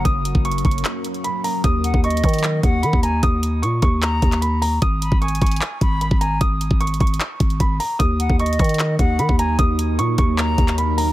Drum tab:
HH |x-----------x-----------x---x---x---x---x---x---x-----------x-----x-----x-----------o-----------|x-----------x-----------x---x---x---x--x--x--x--x-----------x-----------x-----------x-----------|x-----------x-----------x-----------x-----------x-----------x-----x-----x-----------o-----------|x-----------x-----------x---x---x---x--x--x--x--x-----------x-----------x-----------x-----------|
CP |------------------------------------------------x-----------------------------------------------|------------------------------------------------x-----------------------------------------------|------------------------------------------------x-----------------x-----------------------------|------------------------------------------------x-----------------------------------------------|
BD |o-----------------o-----------------o-----------------------------------------------------------|o-----------------o-----------------o-----------------------o-----------------o-----------------|o-----------------------------------o-----------------------o-----------------------------------|o-----------------o-----------------o-----------------------o-----------------o-----------------|

HH |x-----------x-----------x---x---x---x---x---x---x-----------x-----x-----x-----------o-----------|x-----------x-----------x---x---x---x--x--x--x--x-----------x-----------x-----------x-----------|x-----------x-----------x-----------x-----------x-----------x-----x-----x-----------o-----------|
CP |------------------------------------------------x-----------------------------------------------|------------------------------------------------x-----------------------------------------------|------------------------------------------------x-----------------x-----------------------------|
BD |o-----------------o-----------------o-----------------------o-----------o-----------------------|o-----------------o-----------------o-----------------------o-----------------o-----------------|o-----------------------------------o-----------------------o-----------------------------------|